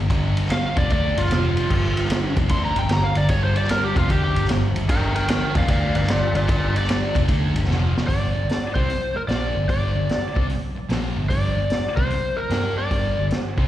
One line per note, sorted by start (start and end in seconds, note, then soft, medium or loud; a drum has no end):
0.08 0.73 G1 medium
0.08 0.75 G2 medium
0.08 0.76 D3 loud
0.08 0.76 G3 loud
0.08 kick loud
0.08 ride medium
0.37 ride medium
0.46 snare soft
0.50 0.76 F5 loud
0.50 snare loud
0.50 ride loud
0.76 0.89 F1 medium
0.76 0.89 F2 medium
0.76 0.89 C3 loud
0.76 0.90 F3 loud
0.76 0.90 D5 medium
0.76 kick loud
0.76 ride medium
0.90 1.15 D2 loud
0.90 1.16 D3 loud
0.90 1.16 A3 medium
0.90 1.16 D4 loud
0.90 1.17 D5 medium
0.90 kick loud
0.90 ride medium
1.17 1.29 G1 medium
1.17 1.30 G2 medium
1.17 1.30 D3 medium
1.17 2.34 F4 loud
1.17 ride medium
1.26 1.69 F2 medium
1.26 snare soft
1.30 1.67 F1 medium
1.30 1.69 C3 loud
1.30 1.70 F3 loud
1.30 snare loud
1.30 ride medium
1.57 ride medium
1.70 2.33 G1 loud
1.70 2.35 G2 loud
1.70 2.36 D3 medium
1.70 2.36 G3 medium
1.70 kick loud
1.70 crash loud
1.97 ride medium
2.05 snare soft
2.10 snare loud
2.10 ride loud
2.36 2.49 F1 medium
2.36 2.49 F2 medium
2.36 2.50 C3 medium
2.36 2.50 F3 loud
2.36 kick loud
2.36 ride medium
2.49 2.75 D2 medium
2.49 2.76 D3 medium
2.49 2.76 A3 medium
2.49 2.76 D4 loud
2.49 2.63 C6 loud
2.49 kick loud
2.49 ride loud
2.65 2.77 A#5 medium
2.76 2.88 G1 medium
2.76 2.87 G2 medium
2.76 2.87 D3 medium
2.76 2.90 G5 medium
2.76 ride medium
2.89 3.14 G1 medium
2.89 3.11 G2 medium
2.89 3.11 D3 medium
2.89 3.04 A#5 medium
2.89 snare loud
2.89 ride medium
3.04 3.16 F5 medium
3.15 3.28 G1 medium
3.15 3.27 G2 medium
3.15 3.27 D3 medium
3.15 3.30 D5 medium
3.15 ride medium
3.29 3.92 G1 medium
3.29 3.95 G2 medium
3.29 3.96 D3 loud
3.29 3.96 G3 loud
3.29 3.43 C#5 loud
3.29 kick loud
3.29 ride medium
3.44 3.56 C5 medium
3.56 3.69 D5 medium
3.56 ride medium
3.64 snare soft
3.69 3.83 A#4 medium
3.69 snare loud
3.69 ride loud
3.84 3.96 G4 medium
3.96 4.08 F1 medium
3.96 4.09 F2 medium
3.96 4.09 C3 medium
3.96 4.09 F3 loud
3.96 4.10 F4 medium
3.96 kick loud
3.96 ride medium
4.09 4.34 D2 loud
4.09 4.35 D3 medium
4.09 4.35 A3 loud
4.09 4.36 D4 loud
4.09 4.23 G4 loud
4.09 kick loud
4.09 ride medium
4.24 4.45 G4 loud
4.35 4.47 G1 medium
4.35 4.47 G2 medium
4.35 4.47 D3 medium
4.35 ride medium
4.45 snare soft
4.49 4.73 G1 medium
4.49 4.71 G2 medium
4.49 4.71 D3 medium
4.49 snare loud
4.49 ride medium
4.75 4.88 G1 medium
4.75 4.87 G2 medium
4.75 4.87 D3 medium
4.75 ride medium
4.89 5.51 G1 medium
4.89 5.55 G2 medium
4.89 5.55 D3 loud
4.89 5.55 G3 loud
4.89 5.15 A#4 medium
4.89 5.15 G5 medium
4.89 kick loud
4.89 ride loud
5.16 5.28 A#4 medium
5.16 5.29 G5 medium
5.16 ride medium
5.28 5.54 A#4 medium
5.28 5.55 G5 loud
5.28 snare loud
5.28 ride loud
5.55 5.68 F1 medium
5.55 5.68 F2 medium
5.55 5.68 C3 medium
5.55 5.68 F3 loud
5.55 5.69 D5 medium
5.55 5.69 F5 loud
5.55 kick loud
5.55 ride medium
5.68 5.93 D2 loud
5.68 5.94 D3 medium
5.68 5.94 A3 loud
5.68 5.94 D4 loud
5.68 5.94 D5 medium
5.68 5.96 F5 medium
5.68 kick loud
5.68 ride medium
5.95 6.07 G1 medium
5.95 6.06 G2 medium
5.95 6.06 D3 medium
5.95 6.08 D5 medium
5.95 6.09 F5 medium
5.95 ride medium
6.04 snare soft
6.08 6.33 G1 medium
6.08 6.29 G2 medium
6.08 6.30 D3 medium
6.08 6.34 F4 medium
6.08 6.35 D5 medium
6.08 snare loud
6.08 ride medium
6.34 6.47 G1 medium
6.34 6.45 G2 medium
6.34 6.45 D3 medium
6.34 6.48 F4 medium
6.34 6.49 D5 medium
6.34 ride medium
6.47 7.11 G1 loud
6.47 7.13 G2 medium
6.47 7.13 D3 medium
6.47 7.14 G3 loud
6.47 6.73 F4 medium
6.47 6.75 D5 loud
6.47 kick loud
6.47 ride medium
6.76 7.15 D5 loud
6.76 ride medium
6.84 snare soft
6.89 snare loud
6.89 ride medium
7.14 7.27 F1 medium
7.14 7.27 F2 medium
7.14 7.26 C3 medium
7.14 7.27 F3 medium
7.14 kick loud
7.14 ride medium
7.27 7.53 D2 loud
7.27 7.53 D3 medium
7.27 7.53 A3 loud
7.27 7.54 D4 loud
7.27 kick loud
7.27 ride medium
7.54 7.67 G1 medium
7.54 7.68 G2 medium
7.54 7.68 D3 medium
7.54 ride medium
7.64 8.07 F2 medium
7.64 snare soft
7.68 8.05 F1 loud
7.68 8.08 C3 medium
7.68 8.08 F3 loud
7.68 snare medium
7.97 snare loud
8.07 8.33 G1 medium
8.07 8.33 G2 medium
8.07 8.34 D3 medium
8.07 8.34 G3 medium
8.07 8.74 D5 medium
8.07 kick medium
8.07 open hi-hat medium
8.35 8.48 G1 medium
8.35 8.45 G2 medium
8.35 8.46 D3 medium
8.49 snare loud
8.49 open hi-hat medium
8.74 8.87 C2 medium
8.74 8.88 C3 medium
8.74 8.88 G3 medium
8.74 8.89 C4 medium
8.74 9.16 C5 medium
8.74 kick loud
8.88 muted picked electric bass stroke soft
8.88 muted distorted electric guitar stroke medium
8.88 open hi-hat soft
9.14 9.21 A#4 medium
9.14 muted distorted electric guitar stroke medium
9.14 muted picked electric bass stroke soft
9.28 9.53 A#1 medium
9.28 9.54 A#2 medium
9.28 9.55 F3 medium
9.28 9.55 A#3 medium
9.28 9.68 D5 medium
9.28 snare medium
9.28 open hi-hat soft
9.55 9.68 G1 medium
9.55 9.66 G2 medium
9.55 9.66 D3 medium
9.68 9.94 G1 medium
9.68 9.94 G2 medium
9.68 9.94 D3 medium
9.68 9.95 G3 medium
9.68 10.46 D5 medium
9.68 kick loud
9.68 open hi-hat soft
9.95 10.08 G1 medium
9.95 10.06 G2 medium
9.95 10.06 D3 medium
10.09 snare loud
10.09 open hi-hat soft
10.35 10.49 C2 medium
10.35 10.48 C3 medium
10.35 10.49 G3 medium
10.35 10.49 C4 medium
10.35 kick loud
10.49 muted distorted electric guitar stroke medium
10.49 muted picked electric bass stroke soft
10.49 open hi-hat soft
10.76 muted distorted electric guitar stroke medium
10.76 muted picked electric bass stroke soft
10.89 11.14 A#1 medium
10.89 11.15 A#2 medium
10.89 11.16 F3 medium
10.89 11.16 A#3 medium
10.89 snare loud
10.89 open hi-hat soft
11.16 11.29 G1 medium
11.16 11.27 G2 medium
11.16 11.28 D3 medium
11.29 11.55 G1 medium
11.29 11.55 G2 medium
11.29 11.56 D3 medium
11.29 11.57 G3 loud
11.29 11.96 D5 loud
11.29 kick medium
11.29 open hi-hat medium
11.56 11.69 G1 medium
11.56 11.67 G2 medium
11.56 11.68 D3 medium
11.70 snare loud
11.70 open hi-hat soft
11.97 12.10 C2 medium
11.97 12.10 C3 medium
11.97 12.10 G3 medium
11.97 12.11 C4 medium
11.97 12.38 C5 medium
11.97 kick loud
12.10 muted picked electric bass stroke soft
12.10 muted distorted electric guitar stroke medium
12.10 open hi-hat soft
12.37 12.78 A#4 medium
12.37 muted picked electric bass stroke soft
12.37 muted distorted electric guitar stroke medium
12.50 12.88 G2 medium
12.50 12.90 G3 medium
12.50 12.90 D4 medium
12.50 12.91 G4 medium
12.50 snare medium
12.50 open hi-hat soft
12.78 13.27 D5 medium
12.90 13.16 G1 medium
12.90 13.16 G2 medium
12.90 13.17 D3 medium
12.90 13.17 G3 loud
12.90 kick loud
12.90 open hi-hat soft
13.17 13.30 G1 medium
13.17 13.28 G2 medium
13.17 13.28 D3 medium
13.31 snare loud
13.31 open hi-hat soft
13.57 13.68 C2 medium
13.57 13.68 C3 medium
13.57 13.68 G3 medium
13.57 13.68 C4 medium
13.57 kick loud